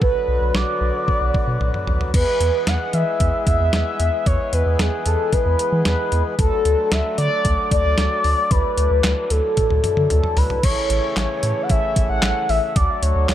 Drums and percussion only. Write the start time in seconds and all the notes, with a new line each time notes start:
0.02 kick
0.55 snare
1.08 kick
1.34 kick
1.61 high tom
1.74 mid tom
1.87 mid tom
2.01 floor tom
2.14 kick, closed hi-hat, crash
2.41 closed hi-hat
2.67 snare, closed hi-hat
2.93 closed hi-hat
3.20 kick, closed hi-hat
3.47 kick, closed hi-hat
3.73 snare, closed hi-hat
4.00 closed hi-hat
4.26 kick, closed hi-hat
4.53 closed hi-hat
4.79 snare, closed hi-hat
5.06 closed hi-hat
5.33 kick, closed hi-hat
5.59 closed hi-hat
5.85 snare, closed hi-hat
6.12 closed hi-hat
6.39 kick, closed hi-hat
6.65 closed hi-hat
6.92 snare, closed hi-hat
7.18 closed hi-hat
7.45 kick, closed hi-hat
7.71 kick, closed hi-hat
7.98 snare, closed hi-hat
8.24 open hi-hat
8.51 kick, closed hi-hat
8.78 closed hi-hat
9.04 snare, clap, closed hi-hat
9.30 closed hi-hat
9.57 kick, closed hi-hat, high tom
9.70 high tom
9.84 closed hi-hat, mid tom
9.97 mid tom
10.10 closed hi-hat, mid tom
10.24 mid tom
10.37 floor tom, open hi-hat
10.50 floor tom
10.63 kick, closed hi-hat, crash
10.90 closed hi-hat
11.17 snare, clap, closed hi-hat
11.43 closed hi-hat
11.70 kick, closed hi-hat
11.96 kick, closed hi-hat
12.22 snare, clap, closed hi-hat
12.49 open hi-hat
12.76 kick, closed hi-hat
13.03 closed hi-hat
13.29 snare, clap, closed hi-hat